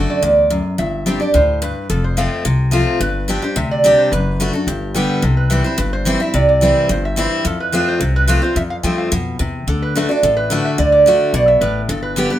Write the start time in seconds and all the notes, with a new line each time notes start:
Already playing: F#2 D3 A3 D4 F#4 A4
0.10 D5
0.22 D2 E2 D5
0.50 F#2
0.78 G1 G2 E5
1.06 G3 C4 D4 G4
1.20 D4 G4 D5
1.34 D2 A2 C5
1.62 G2 B4
1.90 F1 F2 A4
2.04 C5
2.17 F3 A3 C4 F4 F5
2.45 C2 C3
2.71 F3 A3 C4 F4
3.00 G1 G2 B4
3.28 G3 C4 D4 G4
3.42 D4 G4 C5
3.56 D2 C3 E5
3.71 D5
3.84 G3 C4 D4 G4
3.98 C5
4.12 F#1 F#2 B4
4.40 D3 A3 D4 F#4
4.53 D4 F#4 A4
4.67 G1 G2 G4
4.95 D3 G3 B3 G4
5.22 C2 C3 A4
5.37 B4
5.50 E3 G3 C4 E4 B4
5.64 C4 E4 C5
5.78 G1 G2 B4
5.93 C5
6.05 E3 G3 C4 E4
6.20 C4 E4 E5
6.34 C2 C3 D5
6.49 D5
6.61 E3 G3 C4 E4
6.89 G1 G2 C5
7.05 E5
7.16 E3 G3 C4 E4 C5
7.45 F2 A4
7.60 B4
7.72 F3 A3 C4 F4 B4
7.88 C5
8.00 C2 C3
8.16 B4
8.28 F3 A3 C4 F4
8.42 C4 F4 C5
8.56 F2 E5
8.70 F5
8.83 G2 F3 A3 C4 F4 G5
8.98 F5
9.12 F2 B2
9.39 E2 C3
9.67 D2 D3 A4
9.82 B4
9.95 D3 A3 D4 F#4 B4
10.09 D4 F#4 D5
10.23 A1 A2 A4
10.37 B4
10.50 D3 A3 D4 F#4
10.65 E5
10.78 D2 D3 D5
10.92 D5
11.06 D3 A3 D4 F#4
11.33 B1 B2 D5
11.48 E5
11.61 A1 A2 B4
11.89 G1 G2 A4
12.03 B4
12.16 D3 G3 B3 G4
12.30 B3 G4 B4